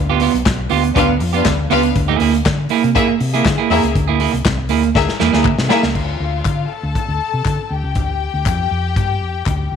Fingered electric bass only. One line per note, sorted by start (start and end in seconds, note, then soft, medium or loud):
0.00 0.27 D2 loud
0.34 0.43 B1 medium
0.46 0.66 B1 loud
0.71 0.91 D2 loud
0.96 1.21 D2 medium
1.21 1.41 F2 medium
1.46 1.66 D2 loud
1.71 1.91 C#2 medium
1.96 2.16 D2 loud
2.20 2.40 D2 loud
2.46 2.66 D3 loud
2.84 2.93 C3 loud
3.21 3.40 C3 medium
3.45 3.56 D3 loud
3.70 3.81 E2 loud
3.83 3.93 C#2 medium
3.96 4.26 D2 loud
4.33 4.43 C2 medium
4.45 4.71 C2 medium
4.71 4.91 D2 medium
4.95 5.06 D2 medium
5.20 5.31 E2 medium
5.33 5.43 D2 medium
5.45 5.56 D3 loud
5.59 5.68 C3 medium
5.83 5.93 C#2 medium
5.95 6.15 D2 medium
6.20 6.40 D2 medium
6.45 6.65 D3 medium
6.83 6.93 D2 medium
7.08 7.18 D2 medium
7.34 7.43 C3 medium
7.46 7.56 D3 medium
7.71 7.81 D2 medium
7.84 7.96 C#2 medium
7.96 8.27 D2 medium
8.34 8.46 D2 medium
8.46 8.66 F2 medium
8.71 8.96 F2 medium
8.96 9.21 G2 medium
9.21 9.42 F2 medium
9.46 9.67 D2 medium
9.72 9.76 C#2 medium